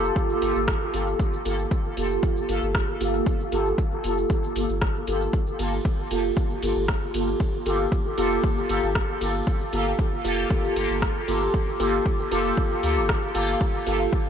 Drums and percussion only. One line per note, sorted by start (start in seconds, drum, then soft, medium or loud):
0.04 shaker soft
0.16 kick loud
0.16 shaker soft
0.30 shaker soft
0.42 open hi-hat medium
0.42 shaker medium
0.56 shaker soft
0.68 kick loud
0.68 cross-stick loud
0.68 shaker soft
0.94 open hi-hat medium
0.94 shaker medium
1.07 shaker soft
1.20 kick loud
1.20 shaker soft
1.33 shaker soft
1.45 open hi-hat medium
1.45 shaker medium
1.59 shaker soft
1.71 kick loud
1.71 shaker soft
1.97 open hi-hat medium
1.97 shaker medium
2.11 shaker soft
2.23 kick loud
2.23 shaker soft
2.37 shaker soft
2.49 open hi-hat medium
2.49 shaker medium
2.63 shaker soft
2.75 kick loud
2.75 cross-stick medium
2.75 shaker soft
3.01 open hi-hat medium
3.01 shaker medium
3.14 shaker soft
3.26 kick loud
3.26 shaker soft
3.40 shaker soft
3.52 open hi-hat medium
3.52 shaker medium
3.66 shaker soft
3.78 kick loud
3.78 shaker soft
4.04 open hi-hat medium
4.04 shaker medium
4.18 shaker soft
4.30 kick loud
4.30 shaker soft
4.44 shaker soft
4.56 open hi-hat medium
4.56 shaker medium
4.69 shaker soft
4.82 kick loud
4.82 cross-stick medium
4.82 shaker soft
5.07 open hi-hat medium
5.07 shaker medium
5.21 shaker soft
5.33 kick loud
5.33 shaker soft
5.47 shaker soft
5.59 open hi-hat medium
5.59 ride medium
5.59 shaker medium
5.73 shaker soft
5.85 kick loud
5.85 shaker soft
6.11 open hi-hat medium
6.11 ride medium
6.11 shaker medium
6.25 shaker soft
6.37 kick loud
6.37 shaker soft
6.50 shaker soft
6.63 open hi-hat medium
6.63 ride medium
6.63 shaker medium
6.76 shaker soft
6.88 kick loud
6.88 cross-stick medium
6.88 shaker soft
7.14 open hi-hat medium
7.14 ride medium
7.14 shaker medium
7.28 shaker soft
7.40 kick loud
7.40 shaker soft
7.54 shaker soft
7.66 open hi-hat medium
7.66 ride medium
7.66 shaker medium
7.80 shaker soft
7.92 kick loud
7.92 shaker soft
8.18 open hi-hat medium
8.18 ride medium
8.18 shaker medium
8.31 shaker soft
8.44 kick loud
8.44 shaker soft
8.57 shaker soft
8.69 open hi-hat medium
8.69 ride medium
8.69 shaker medium
8.83 shaker soft
8.95 kick loud
8.95 cross-stick medium
8.95 shaker soft
9.21 open hi-hat medium
9.21 ride medium
9.21 shaker medium
9.35 shaker soft
9.47 kick loud
9.47 shaker soft
9.61 shaker soft
9.73 open hi-hat medium
9.73 ride medium
9.73 shaker medium
9.87 shaker soft
9.99 kick loud
9.99 shaker soft
10.25 open hi-hat medium
10.25 ride medium
10.25 shaker medium
10.38 shaker soft
10.51 kick loud
10.51 shaker soft
10.64 shaker soft
10.76 open hi-hat medium
10.76 ride medium
10.76 shaker medium
10.90 shaker soft
11.02 kick loud
11.02 cross-stick medium
11.02 shaker soft
11.28 open hi-hat medium
11.28 ride medium
11.28 shaker medium
11.42 shaker soft
11.54 kick loud
11.54 shaker soft
11.68 shaker soft
11.80 open hi-hat medium
11.80 ride medium
11.80 shaker medium
11.94 shaker soft
12.06 kick loud
12.06 shaker soft
12.19 shaker soft
12.32 open hi-hat medium
12.32 ride medium
12.32 shaker medium
12.45 shaker soft
12.57 kick loud
12.57 shaker soft
12.71 shaker soft
12.83 open hi-hat medium
12.83 ride medium
12.83 shaker medium
12.97 shaker soft
13.09 kick loud
13.09 cross-stick loud
13.09 shaker soft
13.23 shaker soft
13.35 open hi-hat medium
13.35 ride medium
13.35 shaker medium
13.49 shaker soft
13.61 kick loud
13.61 shaker soft
13.74 shaker soft
13.87 open hi-hat medium
13.87 ride medium
13.87 shaker medium
14.00 shaker soft
14.12 kick loud
14.12 shaker soft